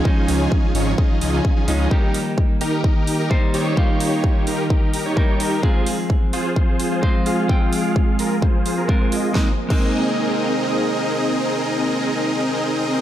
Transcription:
<<
  \new Staff \with { instrumentName = "Supersaw synth" } { \time 4/4 \key aes \major \tempo 4 = 129 <des' ees' f' aes' aes''>4. <des' ees' f' aes' des''>16 r16 <des' ees' f' aes' ees''>8 <des' ees' f' aes' ees''>16 <des' ees' f' aes' aes''>8 <des' ees' f' aes' aes''>16 <des' ees' f' aes' ees''>8 | <ees' g' bes'>8 r4 <ees' g' bes'>8 <ees' g' bes'>8. <ees' g' bes'>16 r8 <ees' g' des''>8~ | <ees' g' des''>4. <ees' g' bes'>16 r16 <ees' g' bes'>8 <ees' g' bes'>16 <ees' g' des''>8 <ees' g' des''>16 <ees' g' bes'>8 | <f' aes' c''>8 r4 <f' aes' c''>8 <f' aes' c''>8. <f' aes' c''>16 r8 <f' aes' f''>8~ |
<f' aes' f''>4. <f' aes' bes'>16 r16 <f' aes' c''>8 <f' aes' c''>16 <f' aes' bes'>8 <f' aes' c''>16 <f' aes' ees''>8 | <c' ees' aes' bes' ees''>16 r8 <c' ees' aes' bes' ees''>2.~ <c' ees' aes' bes' ees''>16~ | <c' ees' aes' bes' ees''>1 | }
  \new Staff \with { instrumentName = "Clean electric guitar" } { \time 4/4 \key aes \major <f aes des' ees'>2. r8 <f aes des' ees'>8 | <g bes ees' g'>2. <g bes ees' c''>4 | <g bes ees' f'>2. <g bes ees' bes'>4 | <aes c' f' aes'>2. <aes c' f' c''>4 |
<aes c' f' g''>2. <aes c' f' bes'>4 | <aes bes c' ees'>16 r8 <aes bes c' ees'>2.~ <aes bes c' ees'>16~ | <aes bes c' ees'>1 | }
  \new Staff \with { instrumentName = "Analog synth pad" } { \time 4/4 \key aes \major <f des' f'>1 | <ees bes g'>1~ | <ees bes g'>1 | <f aes c'>1~ |
<f aes c'>1 | <bes c' aes'>1~ | <bes c' aes'>1 | }
  \new Staff \with { instrumentName = "Detuned saw bass" } { \clef bass \time 4/4 \key aes \major r8 des,8 r8 aes,,8 r8 des,8 r8 des,8 | r1 | r1 | r1 |
r1 | r1 | r1 | }
  \new DrumStaff \with { instrumentName = "Drums" } \drummode { \time 4/4 bd8 hho8 bd8 hho8 bd8 hho8 bd8 hho8 | bd8 hho8 bd8 hho8 bd8 hho8 bd8 hho8 | bd8 hho8 bd8 hho8 bd8 hho8 bd8 hho8 | bd8 hho8 bd8 hho8 bd8 hho8 bd8 hho8 |
bd8 hho8 bd8 hho8 bd8 hho8 bd8 hho8 | <bd sn>8. <cymc bd>16 r4 r4 r4 | r4 r4 r4 r4 | }
>>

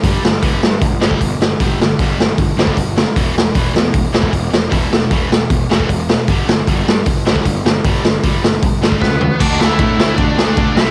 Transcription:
<<
  \new Staff \with { instrumentName = "Lead electric guitar" } { \time 4/4 \key g \major \tempo 4 = 154 r1 | r1 | r1 | r1 |
r1 | r2. <b b'>4 | <d' d''>8 <e' e''>4. <d' d''>8. <d' d''>8. <e' e''>8 | }
  \new Staff \with { instrumentName = "Distorted electric guitar" } { \clef bass \time 4/4 \key g \major <g, d g>8 <g, d>8 <g, d g>8 <g, d>8 <g, d>8 <g, d g>8 <g, d>8 <g, d>8 | <g, d g>8 <g, d>8 <g, d g>8 <g, d>8 <g, d>8 <g, d g>8 <g, d>8 <g, d>8 | <e, b, e>8 <e, b,>8 <e, b, e>8 <e, b,>8 <e, b,>8 <e, b, e>8 <e, b,>8 <e, b,>8 | <e, b, e>8 <e, b,>8 <e, b, e>8 <e, b,>8 <e, b,>8 <e, b, e>8 <e, b,>8 <e, b,>8 |
<g, d g>8 <g, d>8 <g, d g>8 <g, d>8 <g, d>8 <g, d g>8 <g, d>8 <g, d>8 | <g, d g>8 <g, d>8 <g, d g>8 <g, d>8 <g, d>8 <g, d g>8 <g, d>8 <g, d>8 | <d a d'>8 <d a d'>8 <d a d'>8 <d a d'>8 <d a d'>8 <d a d'>8 <d a d'>8 <c g c'>8 | }
  \new Staff \with { instrumentName = "Picked electric bass" } { \clef bass \time 4/4 \key g \major g,,8 g,,8 g,,8 g,8 g,,8 g,,8 g,,8 g,,8 | g,,8 g,,8 g,,8 g,,8 g,,8 g,,8 g,,4 | e,,8 e,,8 e,,8 e,8 e,,8 e,,8 e,,8 e,,8 | e,,8 e,,8 e,,8 e,,8 e,,8 e,,8 e,,4 |
g,,8 g,,8 g,,8 g,8 g,,8 g,,8 g,,8 g,,8 | g,,8 g,,8 g,,8 g,,8 g,,8 g,,8 cis,4 | d,8 d,8 a,8 d,8 d,8 d,8 d,8 c,8 | }
  \new DrumStaff \with { instrumentName = "Drums" } \drummode { \time 4/4 <hho bd>8 sn8 <hho bd>8 sn8 <hho bd>8 sn16 bd16 <hho bd>8 sn8 | <hho bd>8 sn8 <hho bd>8 sn8 <hho bd>8 sn16 bd16 <hho bd>8 sn8 | <hho bd>8 sn8 <hho bd>8 sn8 <hho bd>8 sn16 bd16 <hho bd>8 sn8 | <hho bd>8 sn8 <hho bd>8 sn8 <hho bd>8 sn16 bd16 <hho bd>8 sn8 |
<hho bd>8 sn8 <hho bd>8 sn8 <hho bd>8 sn16 bd16 <hho bd>8 sn8 | <hho bd>8 sn8 <hho bd>8 sn8 <hho bd>8 sn16 bd16 <bd sn>8 tomfh8 | <cymc bd>8 sn8 <bd cymr>8 sn8 <bd cymr>8 sn8 <bd cymr>8 sn8 | }
>>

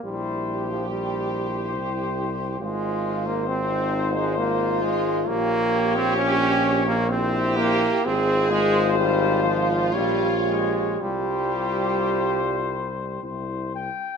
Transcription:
<<
  \new Staff \with { instrumentName = "Flugelhorn" } { \time 3/4 \key f \minor \tempo 4 = 65 c''4 c''2 | c''2. | des''2 c''4 | c''2 des''4 |
c''2 c''8 g''8 | }
  \new Staff \with { instrumentName = "French horn section" } { \time 3/4 \key f \minor g'2. | f'4 ees'4 f'4 | g'2 g'4 | aes'4 f'2 |
g'2~ g'8 r8 | }
  \new Staff \with { instrumentName = "Euphonium" } { \time 3/4 \key f \minor e'4 e'2 | f'2.~ | f'2 e'4 | f'2 g'4 |
f'2 e'8 r8 | }
  \new Staff \with { instrumentName = "Trombone" } { \clef bass \time 3/4 \key f \minor g8. f16 g4 r4 | aes8. bes16 c'8. aes16 bes8 aes8 | bes8. c'16 des'8. bes16 c'8 bes8 | c'8 aes8 g8 f8 g8 aes8 |
g2~ g8 r8 | }
  \new Staff \with { instrumentName = "Tuba" } { \clef bass \time 3/4 \key f \minor bes,,2 c,4 | aes,,2. | bes,,2. | aes,,2 bes,,4 |
c,2 c,8 r8 | }
>>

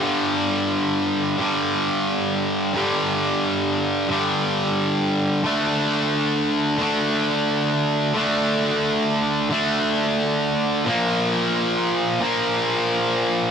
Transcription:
\new Staff \with { instrumentName = "Distorted electric guitar" } { \clef bass \time 4/4 \key g \minor \tempo 4 = 89 <g, d g>2 <g, d g>2 | <g, d g>2 <g, d g>2 | <d a d'>2 <d a d'>2 | <d a d'>2 <d a d'>2 |
<bes, f bes>2 <bes, f bes>2 | }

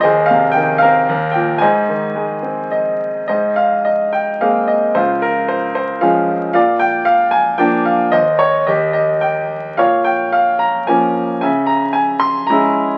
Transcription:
<<
  \new Staff \with { instrumentName = "Grand piano" } { \time 3/4 \key aes \major \tempo 4 = 111 << { ees''8 f''8 g''8 f''4 g''8 | aes''2 ees''4 | ees''8 f''8 ees''8 g''8 f''8 ees''8 | c''8 bes'8 c''8 c''8 f''8. r16 |
f''8 g''8 f''8 aes''8 g''8 f''8 | ees''8 des''8 ees''8 ees''8 g''8. r16 | f''8 g''8 f''8 bes''8 aes''8 r8 | aes''8 bes''8 aes''8 c'''8 bes''8 r8 | } \\ { <aes' c''>4. bes'4. | <c'' ees''>2 r4 | c''4. r4. | f'4. r4. |
d''4. r4. | c''4 g'4. r8 | des''4. r4. | fes''4. r4. | } >> }
  \new Staff \with { instrumentName = "Grand piano" } { \clef bass \time 3/4 \key aes \major ees,8 c8 ees8 c'8 ees,8 bes,8 | aes,8 ees8 aes8 c'4. | aes,2 <aes bes c'>4 | des,2 <f aes des'>4 |
bes,2 <f bes d'>4 | ees,4 ees,2 | bes,2 <f bes des'>4 | des2 <aes des' fes'>4 | }
>>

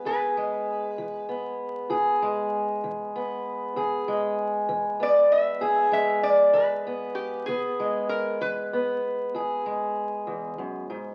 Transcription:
<<
  \new Staff \with { instrumentName = "Resonator guitar played with a steel bar" } { \time 12/8 \key e \major \tempo 4. = 64 b'2 r1 | r2 d''8 e''4 e''8 d''8 b'4 g'8 | gis'4 ais'8 b'4 r2. r8 | }
  \new Staff \with { instrumentName = "Steel-string acoustic guitar" } { \clef bass \time 12/8 \key e \major << { <b gis'>8 gis4. b4 gis'8 gis4. b4 | gis'8 gis4. b4 gis'8 gis4. b4 | b8 gis4. b4 gis'8 gis2~ gis8 | } \\ { e,4 r8 e4 r8 e,4 r8 e4 r8 | e,4 r8 e4 r8 e,4 r8 e4 r8 | e,4 r8 e4 r8 e,4 r8 e,8 fis,8 gis,8 | } >> }
>>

